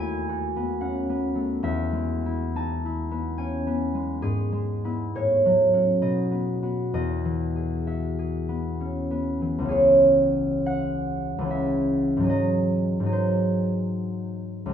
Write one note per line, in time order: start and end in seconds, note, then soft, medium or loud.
0.00 1.66 D#2 medium
0.00 1.34 A3 soft
0.00 0.55 B3 soft
0.00 0.46 E4 soft
0.00 0.28 F#4 soft
0.00 1.46 B4 medium
0.00 1.66 D#5 medium
0.00 1.37 G#5 medium
0.29 1.67 F#4 soft
0.56 1.08 B3 soft
0.81 1.27 C#4 soft
0.81 1.66 F#5 medium
1.09 3.10 B3 soft
1.35 1.66 A3 soft
1.63 4.27 E2 medium
1.63 5.20 E5 medium
1.92 3.93 G#3 soft
2.26 2.84 E4 soft
2.56 3.03 D#4 soft
2.56 3.98 A5 medium
2.85 4.84 E4 soft
3.11 3.65 B3 soft
3.38 3.86 C#4 soft
3.38 5.20 G#5 medium
3.67 4.83 B3 soft
3.94 4.51 G#3 soft
4.22 5.20 G#2 soft
4.22 5.19 G#4 medium
4.52 5.19 G#3 soft
4.84 5.19 B3 soft
4.84 5.20 E4 soft
5.15 6.06 A2 soft
5.15 6.06 C#5 medium
5.45 6.98 F#3 soft
5.73 6.06 C#4 soft
5.73 6.62 F#4 soft
6.01 6.98 B2 soft
6.01 6.93 D#5 medium
6.31 6.61 B3 soft
6.62 8.47 B3 soft
6.62 6.98 F#4 soft
6.94 9.76 E2 soft
6.94 9.76 D#5 medium
7.25 9.40 E3 soft
7.55 8.18 G#4 soft
7.87 8.41 F#4 soft
7.87 11.49 E5 soft
8.19 9.67 G#4 soft
8.49 9.09 B3 soft
8.80 9.33 C#4 soft
9.11 9.76 B3 soft
9.41 9.60 E3 soft
9.58 11.37 C#2 soft
9.58 11.40 E3 soft
9.65 11.43 C#4 soft
9.65 11.47 G#4 soft
9.71 12.34 C#5 medium
10.66 12.07 F#5 medium
11.38 12.28 C#2 soft
11.38 12.29 E3 soft
11.45 12.31 C#4 soft
11.45 12.25 G#4 soft
11.51 12.34 E5 soft
12.17 12.99 G#2 soft
12.17 13.02 F#3 soft
12.23 13.05 D#4 soft
12.23 13.08 G#4 soft
12.30 14.74 D#5 medium
13.00 14.74 G#2 soft
13.00 14.74 F#3 soft
13.06 14.74 D#4 soft
13.06 14.74 G#4 soft
13.12 14.74 C5 medium
14.66 14.74 C#2 soft
14.66 14.74 G#3 soft